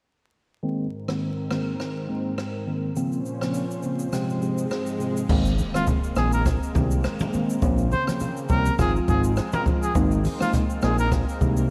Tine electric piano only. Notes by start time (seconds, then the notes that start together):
0.63 D#3 G#3 A#3 C4
1.08 D#3 G#3 A#3 C4
1.50 D#3 G#3 A#3 C4
2.09 D#3 G#3 A#3 C4
2.67 D#3 G#3 A#3 C4
2.96 C#3 F3 A#3 C4
3.41 C#3 F3 A#3 C4
3.83 C#3 F3 A#3 C4
4.13 C3 F3 G#3 C4
4.42 C3 F3 G#3 C4
5.00 C3 F3 G#3 C4
5.29 D#3 G#3 A#3 C4
5.74 D#3 G#3 A#3 C4
6.16 D#3 G#3 A#3 C4
6.75 D#3 G#3 A#3 C4
7.33 D#3 G#3 A#3 C4
7.62 F3 A#3 C4 C#4
8.07 F3 A#3 C4 C#4
8.49 F3 A#3 C4 C#4
8.79 F3 G#3 C4 F4
9.08 F3 G#3 C4 F4
9.66 F3 G#3 C4 F4
9.95 G#3 A#3 C4 D#4
10.40 G#3 A#3 C4 D#4
10.82 G#3 A#3 C4 D#4
11.41 G#3 A#3 C4 D#4